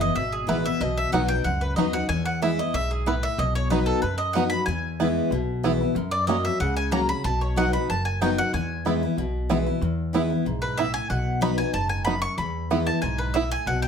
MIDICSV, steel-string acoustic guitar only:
0, 0, Header, 1, 2, 480
1, 0, Start_track
1, 0, Key_signature, 4, "major"
1, 0, Tempo, 321543
1, 1203, Time_signature, 4, 2, 24, 8
1, 20717, End_track
2, 0, Start_track
2, 0, Title_t, "Steel-string acoustic guitar"
2, 0, Program_c, 0, 25
2, 0, Note_on_c, 0, 40, 86
2, 0, Note_on_c, 0, 64, 63
2, 28, Note_on_c, 0, 59, 49
2, 196, Note_off_c, 0, 40, 0
2, 225, Note_off_c, 0, 64, 0
2, 230, Note_on_c, 0, 47, 87
2, 242, Note_off_c, 0, 59, 0
2, 698, Note_on_c, 0, 52, 93
2, 718, Note_on_c, 0, 56, 97
2, 730, Note_on_c, 0, 59, 90
2, 736, Note_on_c, 0, 64, 97
2, 942, Note_off_c, 0, 64, 0
2, 949, Note_off_c, 0, 52, 0
2, 959, Note_off_c, 0, 56, 0
2, 960, Note_on_c, 0, 64, 69
2, 965, Note_off_c, 0, 59, 0
2, 990, Note_on_c, 0, 59, 53
2, 1152, Note_off_c, 0, 47, 0
2, 1188, Note_off_c, 0, 64, 0
2, 1201, Note_on_c, 0, 47, 96
2, 1203, Note_off_c, 0, 59, 0
2, 1672, Note_on_c, 0, 54, 98
2, 1688, Note_on_c, 0, 59, 93
2, 1702, Note_on_c, 0, 63, 89
2, 1710, Note_on_c, 0, 66, 96
2, 1917, Note_off_c, 0, 54, 0
2, 1921, Note_off_c, 0, 66, 0
2, 1925, Note_off_c, 0, 59, 0
2, 1933, Note_off_c, 0, 63, 0
2, 1939, Note_on_c, 0, 66, 70
2, 1971, Note_on_c, 0, 63, 58
2, 2118, Note_off_c, 0, 47, 0
2, 2159, Note_off_c, 0, 66, 0
2, 2161, Note_on_c, 0, 42, 86
2, 2175, Note_off_c, 0, 63, 0
2, 2641, Note_on_c, 0, 54, 91
2, 2651, Note_on_c, 0, 59, 106
2, 2660, Note_on_c, 0, 63, 94
2, 2675, Note_on_c, 0, 66, 92
2, 2870, Note_off_c, 0, 66, 0
2, 2883, Note_off_c, 0, 54, 0
2, 2888, Note_off_c, 0, 59, 0
2, 2888, Note_on_c, 0, 66, 57
2, 2893, Note_off_c, 0, 63, 0
2, 2918, Note_on_c, 0, 63, 59
2, 3079, Note_off_c, 0, 42, 0
2, 3114, Note_off_c, 0, 66, 0
2, 3128, Note_on_c, 0, 40, 99
2, 3129, Note_off_c, 0, 63, 0
2, 3608, Note_on_c, 0, 52, 95
2, 3622, Note_on_c, 0, 56, 87
2, 3634, Note_on_c, 0, 59, 82
2, 3642, Note_on_c, 0, 64, 99
2, 3845, Note_off_c, 0, 64, 0
2, 3847, Note_off_c, 0, 52, 0
2, 3855, Note_off_c, 0, 56, 0
2, 3860, Note_off_c, 0, 59, 0
2, 3863, Note_on_c, 0, 64, 64
2, 3892, Note_on_c, 0, 59, 52
2, 4044, Note_off_c, 0, 40, 0
2, 4083, Note_off_c, 0, 64, 0
2, 4095, Note_on_c, 0, 44, 80
2, 4097, Note_off_c, 0, 59, 0
2, 4550, Note_off_c, 0, 44, 0
2, 4572, Note_on_c, 0, 45, 88
2, 5029, Note_off_c, 0, 45, 0
2, 5065, Note_on_c, 0, 47, 100
2, 5528, Note_on_c, 0, 54, 89
2, 5542, Note_on_c, 0, 59, 100
2, 5554, Note_on_c, 0, 63, 93
2, 5563, Note_on_c, 0, 66, 103
2, 5974, Note_off_c, 0, 47, 0
2, 5988, Note_off_c, 0, 54, 0
2, 5995, Note_off_c, 0, 59, 0
2, 6001, Note_off_c, 0, 63, 0
2, 6006, Note_off_c, 0, 66, 0
2, 6019, Note_on_c, 0, 42, 80
2, 6497, Note_on_c, 0, 54, 88
2, 6512, Note_on_c, 0, 59, 92
2, 6521, Note_on_c, 0, 63, 92
2, 6535, Note_on_c, 0, 66, 106
2, 6731, Note_off_c, 0, 66, 0
2, 6735, Note_off_c, 0, 54, 0
2, 6742, Note_off_c, 0, 59, 0
2, 6747, Note_off_c, 0, 63, 0
2, 6749, Note_on_c, 0, 66, 68
2, 6786, Note_on_c, 0, 63, 47
2, 6932, Note_off_c, 0, 42, 0
2, 6969, Note_off_c, 0, 66, 0
2, 6987, Note_off_c, 0, 63, 0
2, 6991, Note_on_c, 0, 40, 100
2, 7460, Note_on_c, 0, 52, 96
2, 7471, Note_on_c, 0, 56, 82
2, 7483, Note_on_c, 0, 59, 89
2, 7492, Note_on_c, 0, 64, 92
2, 7898, Note_off_c, 0, 40, 0
2, 7916, Note_off_c, 0, 52, 0
2, 7921, Note_off_c, 0, 56, 0
2, 7927, Note_off_c, 0, 59, 0
2, 7932, Note_off_c, 0, 64, 0
2, 7943, Note_on_c, 0, 47, 98
2, 8411, Note_on_c, 0, 52, 91
2, 8422, Note_on_c, 0, 56, 79
2, 8436, Note_on_c, 0, 59, 95
2, 8442, Note_on_c, 0, 64, 96
2, 8648, Note_off_c, 0, 64, 0
2, 8653, Note_off_c, 0, 52, 0
2, 8659, Note_off_c, 0, 56, 0
2, 8666, Note_off_c, 0, 59, 0
2, 8666, Note_on_c, 0, 64, 60
2, 8697, Note_on_c, 0, 59, 50
2, 8855, Note_off_c, 0, 47, 0
2, 8889, Note_off_c, 0, 64, 0
2, 8896, Note_on_c, 0, 42, 96
2, 8904, Note_off_c, 0, 59, 0
2, 9357, Note_on_c, 0, 54, 83
2, 9375, Note_on_c, 0, 58, 98
2, 9387, Note_on_c, 0, 61, 80
2, 9397, Note_on_c, 0, 66, 94
2, 9599, Note_off_c, 0, 66, 0
2, 9607, Note_off_c, 0, 54, 0
2, 9616, Note_off_c, 0, 58, 0
2, 9617, Note_on_c, 0, 66, 60
2, 9622, Note_off_c, 0, 61, 0
2, 9653, Note_on_c, 0, 61, 53
2, 9812, Note_off_c, 0, 42, 0
2, 9844, Note_off_c, 0, 66, 0
2, 9858, Note_on_c, 0, 49, 95
2, 9862, Note_off_c, 0, 61, 0
2, 10321, Note_on_c, 0, 54, 94
2, 10332, Note_on_c, 0, 58, 90
2, 10348, Note_on_c, 0, 61, 97
2, 10353, Note_on_c, 0, 66, 101
2, 10559, Note_off_c, 0, 66, 0
2, 10569, Note_off_c, 0, 54, 0
2, 10574, Note_off_c, 0, 58, 0
2, 10577, Note_on_c, 0, 66, 65
2, 10582, Note_off_c, 0, 61, 0
2, 10612, Note_on_c, 0, 61, 54
2, 10772, Note_off_c, 0, 49, 0
2, 10805, Note_off_c, 0, 66, 0
2, 10818, Note_on_c, 0, 47, 90
2, 10822, Note_off_c, 0, 61, 0
2, 11291, Note_on_c, 0, 54, 94
2, 11304, Note_on_c, 0, 59, 96
2, 11315, Note_on_c, 0, 63, 110
2, 11330, Note_on_c, 0, 66, 100
2, 11533, Note_off_c, 0, 54, 0
2, 11533, Note_off_c, 0, 66, 0
2, 11540, Note_off_c, 0, 59, 0
2, 11546, Note_off_c, 0, 63, 0
2, 11551, Note_on_c, 0, 66, 60
2, 11586, Note_on_c, 0, 63, 54
2, 11732, Note_off_c, 0, 47, 0
2, 11771, Note_off_c, 0, 66, 0
2, 11789, Note_off_c, 0, 63, 0
2, 11789, Note_on_c, 0, 42, 85
2, 12260, Note_on_c, 0, 54, 89
2, 12273, Note_on_c, 0, 59, 93
2, 12283, Note_on_c, 0, 63, 103
2, 12295, Note_on_c, 0, 66, 105
2, 12493, Note_off_c, 0, 66, 0
2, 12497, Note_off_c, 0, 54, 0
2, 12504, Note_off_c, 0, 59, 0
2, 12509, Note_off_c, 0, 63, 0
2, 12511, Note_on_c, 0, 66, 61
2, 12552, Note_on_c, 0, 63, 51
2, 12697, Note_off_c, 0, 42, 0
2, 12731, Note_off_c, 0, 66, 0
2, 12744, Note_on_c, 0, 40, 96
2, 12751, Note_off_c, 0, 63, 0
2, 13210, Note_on_c, 0, 52, 87
2, 13221, Note_on_c, 0, 56, 88
2, 13236, Note_on_c, 0, 59, 82
2, 13250, Note_on_c, 0, 64, 87
2, 13452, Note_off_c, 0, 52, 0
2, 13457, Note_off_c, 0, 56, 0
2, 13458, Note_off_c, 0, 64, 0
2, 13465, Note_off_c, 0, 59, 0
2, 13476, Note_on_c, 0, 64, 69
2, 13510, Note_on_c, 0, 59, 58
2, 13653, Note_off_c, 0, 40, 0
2, 13692, Note_off_c, 0, 64, 0
2, 13707, Note_on_c, 0, 47, 91
2, 13709, Note_off_c, 0, 59, 0
2, 14172, Note_on_c, 0, 52, 99
2, 14183, Note_on_c, 0, 56, 90
2, 14193, Note_on_c, 0, 59, 93
2, 14202, Note_on_c, 0, 64, 101
2, 14409, Note_off_c, 0, 64, 0
2, 14412, Note_off_c, 0, 52, 0
2, 14417, Note_off_c, 0, 56, 0
2, 14423, Note_off_c, 0, 59, 0
2, 14426, Note_on_c, 0, 64, 74
2, 14465, Note_on_c, 0, 59, 54
2, 14614, Note_off_c, 0, 47, 0
2, 14647, Note_off_c, 0, 64, 0
2, 14663, Note_on_c, 0, 40, 86
2, 14666, Note_off_c, 0, 59, 0
2, 15121, Note_on_c, 0, 52, 91
2, 15136, Note_on_c, 0, 56, 93
2, 15147, Note_on_c, 0, 59, 86
2, 15159, Note_on_c, 0, 64, 89
2, 15355, Note_off_c, 0, 64, 0
2, 15366, Note_off_c, 0, 52, 0
2, 15373, Note_off_c, 0, 56, 0
2, 15373, Note_on_c, 0, 64, 62
2, 15378, Note_off_c, 0, 59, 0
2, 15412, Note_on_c, 0, 59, 51
2, 15571, Note_off_c, 0, 40, 0
2, 15599, Note_off_c, 0, 64, 0
2, 15617, Note_on_c, 0, 44, 81
2, 15618, Note_off_c, 0, 59, 0
2, 16071, Note_off_c, 0, 44, 0
2, 16100, Note_on_c, 0, 45, 98
2, 16551, Note_off_c, 0, 45, 0
2, 16572, Note_on_c, 0, 47, 92
2, 17033, Note_on_c, 0, 54, 92
2, 17052, Note_on_c, 0, 59, 98
2, 17058, Note_on_c, 0, 63, 90
2, 17071, Note_on_c, 0, 66, 99
2, 17269, Note_off_c, 0, 66, 0
2, 17279, Note_off_c, 0, 54, 0
2, 17287, Note_on_c, 0, 66, 64
2, 17289, Note_off_c, 0, 59, 0
2, 17292, Note_off_c, 0, 63, 0
2, 17320, Note_on_c, 0, 63, 52
2, 17483, Note_off_c, 0, 47, 0
2, 17514, Note_off_c, 0, 66, 0
2, 17514, Note_on_c, 0, 44, 82
2, 17530, Note_off_c, 0, 63, 0
2, 17977, Note_off_c, 0, 44, 0
2, 18011, Note_on_c, 0, 42, 87
2, 18465, Note_off_c, 0, 42, 0
2, 18498, Note_on_c, 0, 40, 96
2, 18965, Note_on_c, 0, 52, 83
2, 18976, Note_on_c, 0, 56, 95
2, 18986, Note_on_c, 0, 59, 81
2, 18993, Note_on_c, 0, 64, 96
2, 19187, Note_off_c, 0, 64, 0
2, 19203, Note_off_c, 0, 52, 0
2, 19205, Note_on_c, 0, 64, 62
2, 19208, Note_off_c, 0, 56, 0
2, 19214, Note_off_c, 0, 59, 0
2, 19240, Note_on_c, 0, 59, 51
2, 19403, Note_off_c, 0, 40, 0
2, 19431, Note_off_c, 0, 64, 0
2, 19444, Note_on_c, 0, 44, 95
2, 19448, Note_off_c, 0, 59, 0
2, 19899, Note_off_c, 0, 44, 0
2, 19918, Note_on_c, 0, 45, 82
2, 20376, Note_off_c, 0, 45, 0
2, 20411, Note_on_c, 0, 47, 99
2, 20717, Note_off_c, 0, 47, 0
2, 20717, End_track
0, 0, End_of_file